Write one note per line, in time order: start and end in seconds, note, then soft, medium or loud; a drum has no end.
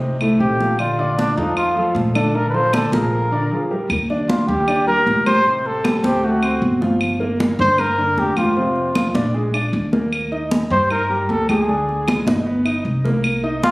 0.00 0.36 C2 medium
0.00 0.14 C3 medium
0.00 0.14 C4 medium
0.00 0.14 D#4 medium
0.00 high conga soft
0.21 0.37 A2 medium
0.21 0.37 A3 medium
0.21 0.37 A4 medium
0.21 high conga soft
0.21 claves medium
0.40 1.31 A#1 medium
0.40 0.56 C3 medium
0.40 0.56 C4 medium
0.40 0.57 D#4 medium
0.40 0.81 G4 medium
0.40 high conga soft
0.60 0.76 F3 medium
0.60 0.76 F4 medium
0.60 0.76 A4 medium
0.60 high conga medium
0.79 0.95 D3 medium
0.79 0.95 D4 medium
0.79 1.17 F4 medium
0.79 0.95 D5 medium
0.79 high conga soft
0.79 claves medium
0.99 1.30 D3 medium
0.99 1.30 D4 medium
0.99 1.31 D5 medium
0.99 high conga soft
1.18 1.39 D4 medium
1.18 high conga medium
1.37 1.92 F2 loud
1.37 1.69 F3 medium
1.37 1.56 D#4 medium
1.37 1.69 F4 medium
1.37 1.70 A4 medium
1.37 high conga soft
1.57 1.93 F4 medium
1.57 high conga soft
1.57 claves medium
1.76 2.08 F3 medium
1.76 2.09 F4 medium
1.76 2.09 A4 medium
1.76 high conga soft
1.95 2.86 A#1 medium
1.95 high conga medium
2.15 2.31 D3 medium
2.15 2.31 D4 medium
2.15 2.37 A4 medium
2.15 2.31 D5 medium
2.15 high conga medium
2.15 claves medium
2.35 2.51 D3 medium
2.35 2.51 D4 medium
2.35 2.49 A#4 loud
2.35 2.51 D5 medium
2.35 high conga soft
2.50 2.56 B4 medium
2.54 2.70 F3 medium
2.54 2.70 F4 medium
2.54 2.70 A4 medium
2.54 2.76 C5 medium
2.54 high conga soft
2.73 2.89 D3 medium
2.73 2.89 D4 medium
2.73 2.93 A4 medium
2.73 2.89 D5 medium
2.73 high conga medium
2.73 claves medium
2.92 3.47 A#1 medium
2.92 3.25 F3 medium
2.92 3.25 F4 medium
2.92 3.25 G#4 medium
2.92 3.67 A#4 medium
2.92 high conga medium
3.32 3.48 D3 medium
3.32 3.48 D4 medium
3.32 3.48 D5 medium
3.51 3.67 F3 medium
3.51 3.67 F4 medium
3.51 3.67 G#4 medium
3.70 3.86 G3 medium
3.70 3.87 G4 medium
3.70 3.87 A#4 medium
3.90 4.44 D#2 medium
3.90 high conga soft
3.90 claves medium
4.10 4.42 D4 medium
4.10 4.42 D5 medium
4.10 high conga soft
4.29 4.49 F4 medium
4.29 high conga medium
4.48 5.03 D#2 loud
4.48 4.64 G3 medium
4.48 4.87 G4 medium
4.48 4.64 G4 medium
4.48 high conga soft
4.68 4.84 D4 medium
4.68 4.84 D5 medium
4.68 high conga soft
4.68 claves medium
4.87 5.19 G3 medium
4.87 5.19 G4 medium
4.87 5.23 A#4 loud
4.87 high conga soft
5.06 5.98 A1 loud
5.06 high conga medium
5.26 5.42 G3 medium
5.26 5.43 G4 medium
5.26 5.68 C5 loud
5.26 high conga medium
5.26 claves medium
5.46 5.78 C3 medium
5.46 5.78 C4 medium
5.46 high conga soft
5.65 6.07 A4 medium
5.65 high conga soft
5.84 6.00 G3 medium
5.84 6.00 G4 medium
5.84 high conga loud
5.84 claves medium
6.03 6.58 D2 medium
6.03 6.19 C4 medium
6.03 6.26 G4 medium
6.03 6.20 C5 medium
6.03 high conga medium
6.23 6.39 A3 medium
6.23 6.82 F#4 medium
6.23 6.39 A4 medium
6.23 high conga soft
6.42 6.74 C4 medium
6.42 6.75 C5 medium
6.42 high conga soft
6.42 claves medium
6.62 7.53 G1 medium
6.62 high conga soft
6.81 7.13 F3 medium
6.81 7.13 F4 medium
6.81 high conga medium
7.01 high conga soft
7.01 claves medium
7.20 7.52 A#3 medium
7.20 7.52 A#4 medium
7.20 high conga soft
7.40 high conga medium
7.59 8.13 G2 loud
7.59 7.75 D3 medium
7.59 7.75 D4 medium
7.59 7.81 C5 loud
7.59 high conga soft
7.78 7.95 A#3 medium
7.78 7.95 A#4 medium
7.78 8.21 A#4 loud
7.78 high conga soft
7.78 claves medium
7.98 8.30 D3 medium
7.98 8.30 D4 medium
7.98 high conga soft
8.17 9.09 F2 medium
8.17 8.39 G4 medium
8.17 high conga medium
8.37 8.53 F3 medium
8.37 8.53 F4 medium
8.37 9.15 F4 medium
8.37 high conga medium
8.37 claves medium
8.57 8.89 C3 medium
8.57 8.89 C4 medium
8.57 high conga soft
8.76 high conga soft
8.95 9.12 F3 medium
8.95 9.12 F4 medium
8.95 high conga medium
8.95 claves medium
9.14 9.69 A#1 loud
9.14 9.31 D4 medium
9.14 9.31 D5 medium
9.14 high conga medium
9.34 9.50 G#3 medium
9.34 9.50 G#4 medium
9.34 high conga soft
9.54 9.86 D4 medium
9.54 9.86 D5 medium
9.54 high conga soft
9.54 claves medium
9.73 10.65 D#2 loud
9.73 high conga soft
9.93 10.25 A#3 medium
9.93 10.25 A#4 medium
9.93 high conga medium
10.13 high conga soft
10.13 claves medium
10.32 10.64 D#4 medium
10.32 10.64 D#5 medium
10.32 high conga soft
10.51 high conga medium
10.70 11.25 G2 loud
10.70 10.87 G3 medium
10.70 10.87 G4 medium
10.70 10.89 C5 loud
10.70 high conga soft
10.90 11.06 D#4 medium
10.90 11.32 A#4 medium
10.90 11.07 D#5 medium
10.90 high conga soft
10.90 claves medium
11.10 11.42 G3 medium
11.10 11.42 G4 medium
11.10 high conga soft
11.29 12.21 D2 medium
11.29 11.49 A4 loud
11.29 high conga medium
11.49 11.65 G#3 medium
11.49 11.65 G#4 medium
11.49 12.23 G#4 medium
11.49 high conga medium
11.49 claves medium
11.68 12.00 D3 medium
11.68 12.00 D4 medium
11.68 high conga soft
11.89 high conga soft
12.08 12.23 G#3 medium
12.08 12.24 G#4 medium
12.08 high conga medium
12.08 claves medium
12.26 12.81 G1 medium
12.26 12.43 D#4 medium
12.26 12.43 D#5 medium
12.26 high conga medium
12.46 12.62 B3 medium
12.46 12.62 B4 medium
12.46 high conga soft
12.65 12.97 D#4 medium
12.65 12.98 D#5 medium
12.65 high conga soft
12.65 claves medium
12.85 13.71 C2 medium
12.85 high conga soft
13.04 13.37 A#3 medium
13.04 13.37 A#4 medium
13.04 high conga medium
13.24 high conga soft
13.24 claves medium
13.43 13.71 D#4 medium
13.43 13.71 D#5 medium
13.43 high conga soft
13.63 13.71 F4 medium
13.63 high conga medium